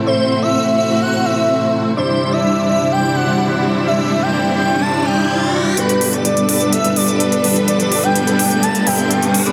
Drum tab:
HH |----------------|----------------|----------------|xxoxxxoxxxoxxxox|

HH |xxoxxxoxxxoxxxox|